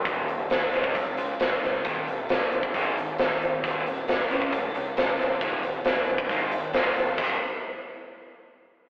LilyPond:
<<
  \new Staff \with { instrumentName = "Overdriven electric guitar" } { \clef bass \time 4/4 \key des \lydian \tempo 4 = 135 <ees, bes, ees>8 <ees, bes,>8 <ees, bes,>8 <des aes des'>8 <des aes>8 <des aes>8 <des aes>8 <des aes>8 | <ees, bes, ees>8 <ees, bes,>8 <ees, bes,>8 <ees, bes,>8 <aes, ees aes>8 <aes, ees>8 <aes, ees>8 <aes, ees>8 | <ees, bes, ees>8 <ees, bes,>8 <ees, bes,>8 <des aes des'>8 <des aes>8 <des aes>8 <des aes>8 <des aes>8 | <ees, bes, ees>8 <ees, bes,>8 <ees, bes,>8 <ees, bes,>8 <aes, ees aes>8 <aes, ees>8 <bes, f bes>8 <bes, f>8 |
<ees, bes, ees>8 r2. r8 | }
  \new Staff \with { instrumentName = "Picked electric bass" } { \clef bass \time 4/4 \key des \lydian ees,,8 ees,,8 ees,,8 des,8 f,,8 des,8 des,8 des,8 | ees,,8 ees,,8 ees,,8 g,,8 aes,,8 aes,,8 aes,,8 aes,,8 | ees,,8 ees,,8 ees,,8 des,8 f,,8 des,8 des,8 des,8 | ees,,8 ees,,8 ees,,8 g,,8 aes,,8 aes,,8 bes,,8 bes,,8 |
ees,,8 r2. r8 | }
  \new DrumStaff \with { instrumentName = "Drums" } \drummode { \time 4/4 <hh bd>8 hh8 <hh sn>8 hh16 bd16 <hh bd>8 hh8 <hh sn>8 <hh sn>8 | <hh bd>8 hh8 <hh sn>8 hh16 bd16 <hh bd>8 hh8 <hh sn>8 hh8 | <hh bd>8 hh8 <hh sn>8 hh16 bd16 <hh bd>8 hh8 <hh sn>8 <hh sn>8 | <hh bd>8 hh8 <hh sn>8 hh16 bd16 <hh bd>8 hh8 <hh sn>8 <hh sn>8 |
<cymc bd>4 r4 r4 r4 | }
>>